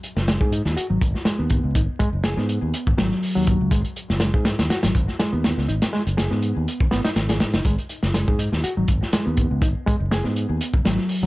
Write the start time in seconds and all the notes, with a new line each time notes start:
0.03 closed hi-hat
0.16 F#1, snare
0.28 G#3, snare, closed hi-hat
0.41 G#2 G#4, kick
0.52 D#4, closed hi-hat
0.65 D#2, snare
0.77 F#4, muted fingered electric bass stroke, closed hi-hat
0.90 G#1 F#3
1.01 G#1, kick, closed hi-hat
1.15 snare
1.25 G#3, snare, closed hi-hat
1.39 D#2 B3
1.50 kick, closed hi-hat
1.64 C#2
1.75 G#1 D#4, kick, closed hi-hat
2.00 G#3, kick, closed hi-hat
2.13 F#1
2.24 G#4, snare, closed hi-hat
2.37 G#2 B3, snare
2.49 closed hi-hat
2.62 D#2
2.74 closed hi-hat
2.87 G#1, kick
2.98 G#1 F#3, snare, closed hi-hat
3.12 snare
3.23 open hi-hat
3.35 D#2 F#3
3.47 kick, closed hi-hat
3.61 C#2
3.71 G#1 G#3, kick, closed hi-hat
3.85 closed hi-hat
3.96 closed hi-hat
4.10 F#1, snare
4.20 G#3, snare, closed hi-hat
4.34 G#2 G#4, kick
4.45 D#4, snare, closed hi-hat
4.59 D#2, snare, closed hi-hat
4.70 F#4, muted fingered electric bass stroke, snare, closed hi-hat
4.83 G#1 F#3, snare, closed hi-hat
4.95 G#1, kick, closed hi-hat
5.08 snare
5.19 G#3, snare, closed hi-hat
5.32 D#2 B3
5.44 snare, closed hi-hat
5.57 C#2, snare
5.68 G#1 D#4, closed hi-hat
5.82 snare, closed hi-hat
5.93 G#3, snare
6.07 F#1, closed hi-hat
6.17 G#4, snare, closed hi-hat
6.31 G#2 B3, snare
6.42 closed hi-hat
6.56 D#2
6.68 closed hi-hat
6.80 G#1, kick
6.91 G#1 B3, snare, closed hi-hat
7.04 D#4, snare, closed hi-hat
7.16 G#1, snare, closed hi-hat
7.29 G#4, snare, closed hi-hat
7.40 G#2, snare, closed hi-hat
7.54 F#1 D#4, snare, closed hi-hat
7.65 G#1 G#3, kick, closed hi-hat
7.78 closed hi-hat
7.89 closed hi-hat
8.03 F#1, snare
8.14 G#3, snare, closed hi-hat
8.28 G#2 G#4, kick
8.39 D#4, closed hi-hat
8.52 D#2, snare
8.64 F#4, muted fingered electric bass stroke, closed hi-hat
8.77 G#1 F#3
8.88 G#1, kick, closed hi-hat
9.03 snare
9.13 G#3, snare, closed hi-hat
9.26 D#2 B3
9.37 kick, closed hi-hat
9.51 C#2
9.62 G#1 D#4, kick, closed hi-hat
9.86 G#3, kick, closed hi-hat
10.00 F#1
10.11 G#4, snare, closed hi-hat
10.24 G#2 B3, snare
10.36 closed hi-hat
10.49 D#2
10.61 closed hi-hat
10.74 G#1, kick
10.85 G#1 F#3, snare, closed hi-hat
10.98 snare
11.09 open hi-hat
11.23 D#2 F#3